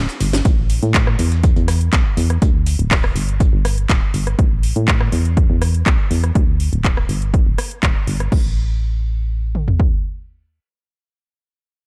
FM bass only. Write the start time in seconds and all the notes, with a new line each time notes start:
0.21 G1
0.45 A1
0.83 A2
1.19 E2
1.56 E2
1.93 B1
2.17 E2
2.42 D2
2.79 D1
3.16 G1
3.53 G1
3.89 D1
4.14 G1
4.39 A1
4.76 A2
5.12 E2
5.50 E2
5.86 B1
6.11 E2
6.35 D2
6.73 D1
7.09 G1
7.47 D1
7.83 D1
8.07 G1
8.32 A1